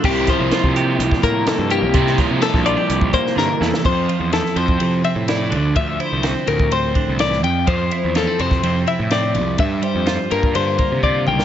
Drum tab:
CC |x---------------|----------------|x---------------|----------------|
RD |----------------|----------------|--x-x-x-x-x-x-x-|x-x-x-x-x-x-x-x-|
HH |--x-x-x-x-x-x-x-|x-x-x-x-x-x-----|----------------|----------------|
SD |--o-o----o--o---|-oo-oo-----oo-oo|----oo------o---|----o-------oo--|
T2 |----------------|----------------|----------------|----------------|
BD |o-o--o---oo-----|o-o--o---oo-----|o------o--------|o------o--o-----|

CC |----------------|----------------|
RD |x-x-x-x-x-x-x-x-|x-x-x-x-x-x-----|
HH |----------------|----------------|
SD |----o--o----o---|----o----------o|
T2 |----------------|--------------o-|
BD |o------o--------|o------o--o-o---|